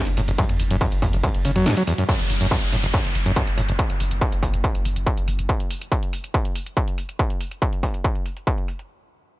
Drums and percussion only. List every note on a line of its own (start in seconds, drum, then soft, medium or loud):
0.07 closed hi-hat medium
0.17 open hi-hat loud
0.28 closed hi-hat medium
0.38 kick loud
0.38 closed hi-hat medium
0.38 ride medium
0.49 closed hi-hat medium
0.49 mid tom medium
0.60 open hi-hat loud
0.71 closed hi-hat medium
0.81 kick loud
0.81 closed hi-hat loud
0.81 ride medium
0.92 closed hi-hat medium
1.02 kick medium
1.02 mid tom medium
1.02 open hi-hat loud
1.13 closed hi-hat medium
1.23 kick loud
1.23 closed hi-hat medium
1.23 ride medium
1.34 closed hi-hat medium
1.45 open hi-hat loud
1.56 closed hi-hat medium
1.56 mid tom medium
1.66 snare loud
1.66 closed hi-hat medium
1.66 ride medium
1.77 closed hi-hat medium
1.87 open hi-hat loud
1.98 closed hi-hat medium
2.09 kick loud
2.09 closed hi-hat medium
2.19 closed hi-hat medium
2.30 open hi-hat loud
2.41 closed hi-hat medium
2.51 kick loud
2.51 closed hi-hat medium
2.62 closed hi-hat medium
2.73 open hi-hat loud
2.83 closed hi-hat medium
2.94 kick loud
2.94 closed hi-hat medium
3.05 closed hi-hat medium
3.15 open hi-hat loud
3.26 closed hi-hat medium
3.36 kick loud
3.36 closed hi-hat loud
3.47 closed hi-hat medium
3.58 open hi-hat loud
3.69 closed hi-hat medium
3.79 kick loud
3.79 closed hi-hat loud
3.90 closed hi-hat medium
4.00 open hi-hat loud
4.11 closed hi-hat medium
4.21 kick loud
4.21 closed hi-hat medium
4.32 closed hi-hat medium
4.43 kick medium
4.43 open hi-hat loud
4.54 closed hi-hat medium
4.64 kick loud
4.64 closed hi-hat loud
4.75 closed hi-hat medium
4.85 open hi-hat loud
4.96 closed hi-hat medium
5.07 kick loud
5.07 closed hi-hat loud
5.17 closed hi-hat medium
5.28 open hi-hat loud
5.39 closed hi-hat soft
5.49 kick loud
5.49 closed hi-hat medium
5.60 closed hi-hat medium
5.71 open hi-hat loud
5.82 closed hi-hat medium
5.92 kick loud
5.92 closed hi-hat medium
6.03 closed hi-hat medium
6.13 open hi-hat loud
6.24 closed hi-hat soft
6.34 kick loud
6.34 closed hi-hat medium
6.45 closed hi-hat medium
6.55 open hi-hat loud
6.66 closed hi-hat medium
6.77 kick loud
6.77 closed hi-hat medium
6.88 closed hi-hat medium
6.98 open hi-hat loud
7.09 closed hi-hat medium
7.19 kick loud
7.19 closed hi-hat medium
7.30 closed hi-hat medium
7.41 open hi-hat loud
7.51 closed hi-hat medium
7.62 kick loud
7.62 closed hi-hat medium
7.73 closed hi-hat medium
7.83 kick medium
7.83 open hi-hat loud
7.94 closed hi-hat soft
8.04 kick loud
8.04 closed hi-hat medium
8.15 closed hi-hat soft
8.26 open hi-hat loud
8.37 closed hi-hat soft
8.47 kick loud
8.47 closed hi-hat medium
8.58 closed hi-hat soft
8.68 open hi-hat loud
8.79 closed hi-hat soft